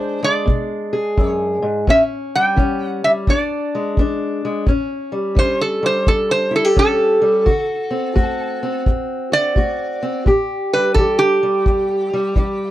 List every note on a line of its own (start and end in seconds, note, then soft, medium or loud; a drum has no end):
0.00 0.43 E3 medium
0.00 0.22 G#3 medium
0.00 1.85 D4 medium
0.00 0.24 C5 medium
0.23 1.84 G#3 medium
0.23 1.26 D5 medium
0.46 1.12 B2 medium
0.46 kick medium
0.93 1.84 G#4 medium
1.17 1.62 F#2 medium
1.17 kick medium
1.26 1.84 C#5 medium
1.62 1.87 G#2 medium
1.87 2.52 A2 medium
1.87 2.56 C#4 medium
1.87 2.02 E5 medium
1.87 kick medium
2.35 3.04 G3 medium
2.35 2.85 G5 loud
2.56 3.22 E3 medium
2.56 3.24 C#4 medium
2.56 kick medium
2.85 3.04 F#5 loud
3.04 3.28 G3 medium
3.04 3.11 E5 medium
3.27 3.93 E2 medium
3.27 3.98 D4 medium
3.27 4.40 D5 medium
3.27 kick medium
3.75 4.44 G#3 medium
3.97 4.63 E3 medium
3.97 4.65 D4 medium
3.97 kick medium
4.45 4.65 G#3 medium
4.67 5.32 A2 medium
4.67 5.35 C#4 medium
4.67 kick medium
5.12 5.82 G3 medium
5.35 6.01 E3 medium
5.35 6.75 C#4 medium
5.35 5.60 C5 medium
5.35 kick medium
5.61 5.83 A4 medium
5.83 7.20 G3 soft
5.83 6.07 C5 medium
6.07 6.72 E2 medium
6.07 6.30 A4 medium
6.07 kick medium
6.31 6.53 C5 medium
6.51 6.65 E4 medium
6.56 6.77 A4 medium
6.65 7.46 G4 medium
6.76 7.41 E3 medium
6.76 7.43 C#4 medium
6.76 8.83 A4 medium
6.76 kick medium
7.22 7.46 G3 medium
7.46 8.11 D3 medium
7.46 8.14 F#4 medium
7.46 kick medium
7.91 8.61 C4 medium
8.15 8.81 A3 medium
8.15 9.31 F#4 medium
8.15 kick medium
8.63 10.01 C4 medium
8.86 9.52 A2 medium
8.86 kick medium
9.32 9.56 F#4 medium
9.32 10.23 D5 loud
9.56 10.21 A3 medium
9.56 10.24 F#4 medium
9.56 kick medium
10.03 10.23 C4 medium
10.26 10.91 A2 medium
10.26 10.98 G4 medium
10.26 kick medium
10.74 11.42 G3 medium
10.74 10.94 B4 medium
10.94 11.62 E3 medium
10.94 11.18 A4 medium
10.94 kick medium
10.99 12.71 G4 medium
11.19 12.71 G4 medium
11.43 12.12 G3 medium
11.66 12.32 E2 medium
11.66 kick medium
12.13 12.36 G3 medium
12.36 12.71 E3 medium
12.36 12.71 G3 medium
12.36 kick medium